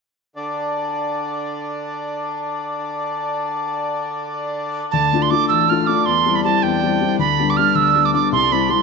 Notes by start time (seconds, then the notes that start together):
0.36 D3 D4
4.91 D2 D3 D4 A5
5.13 A3 D4 F4
5.22 C6
5.30 A3 D4 F4 D6
5.48 A1 E6
5.70 A3 D4 F4 F6
5.87 A3 D4 F4 D6
6.06 E2 C6
6.26 G3 C4 E4
6.35 B5
6.44 G3 C4 E4 A5
6.63 E2 G5
6.83 G3 C4 E4
7.01 G3 C4 E4
7.18 D2 B5
7.39 G3 B3 D4
7.50 D6
7.57 G3 B3 D4 F6
7.75 D2 E6
7.95 G3 B3 D4
8.05 D6
8.13 G3 B3 D4 D6
8.32 C2 C6
8.51 G3 C4 E4 B5
8.69 G3 C4 E4 C6